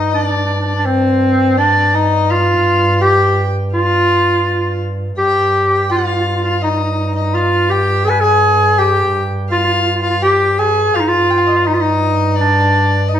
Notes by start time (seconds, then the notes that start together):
Already playing: G2 D#5
0.12 D4 D#5
0.23 D4 D5
0.30 D4
0.37 D4
0.45 D4
0.53 D4
0.60 D4
0.66 D4 D5
0.75 D4
0.85 C4 C5
1.39 C5
1.57 D4 D5
1.94 D#4 D#5
2.30 F4 F5
3.01 G4 G5
3.74 F4 F5
5.16 G2 G4 G5
5.73 G5
5.90 F4 F5
5.98 F4
6.07 F4
6.13 F4
6.20 F4
6.27 F4
6.35 F4
6.44 F4 F5
6.50 F4
6.62 D#4 D#5
6.71 D#4
6.76 D#4
6.84 D#4
6.92 D#4
6.98 D#4
7.06 D#4
7.14 D#4 D#5
7.22 D#4
7.34 F4 F5
7.69 G4 G5
8.05 G#4 G#5
8.10 B4
8.20 G#4 G#5
8.78 G4 G5
9.50 F4 F5
9.58 F4
9.64 F4
9.74 F4
9.81 F4
9.87 F4
9.95 F4
10.02 F4 F5
10.10 F4
10.22 G4 G5
10.59 G#4 G#5
10.94 G2 F4 F5
11.00 D#4
11.09 F4 F5
11.30 G5
11.38 F5
11.47 D#5
11.56 F5
11.65 D#4 D#5
11.74 F4
11.79 D#4 D#5
12.36 D5
12.40 D4
13.08 D#5
13.14 D#4